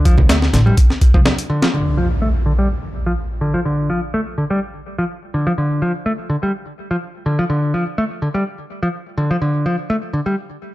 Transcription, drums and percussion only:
0.05 kick loud
0.05 closed hi-hat medium
0.18 kick medium
0.18 low conga medium
0.29 snare loud
0.29 closed hi-hat medium
0.42 snare medium
0.54 snare soft
0.54 closed hi-hat medium
0.67 high conga medium
0.77 kick loud
0.77 closed hi-hat medium
0.90 snare soft
1.01 kick medium
1.01 closed hi-hat medium
1.14 kick medium
1.26 snare loud
1.26 high conga medium
1.38 closed hi-hat medium
1.62 snare loud

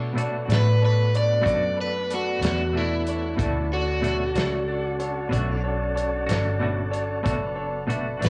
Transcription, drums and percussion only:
0.18 closed hi-hat medium
0.50 snare loud
0.50 closed hi-hat medium
1.14 closed hi-hat medium
1.46 kick medium
1.46 closed hi-hat medium
2.11 closed hi-hat medium
2.43 snare loud
2.43 closed hi-hat medium
3.07 closed hi-hat medium
3.39 kick loud
3.39 closed hi-hat medium
4.04 snare soft
4.04 closed hi-hat soft
4.36 snare loud
4.36 closed hi-hat medium
5.00 closed hi-hat soft
5.32 kick medium
5.32 closed hi-hat medium
5.97 closed hi-hat medium
6.29 snare loud
6.29 closed hi-hat medium
6.93 closed hi-hat medium
7.26 kick loud
7.26 closed hi-hat medium
7.90 closed hi-hat medium
8.22 snare loud
8.22 closed hi-hat medium

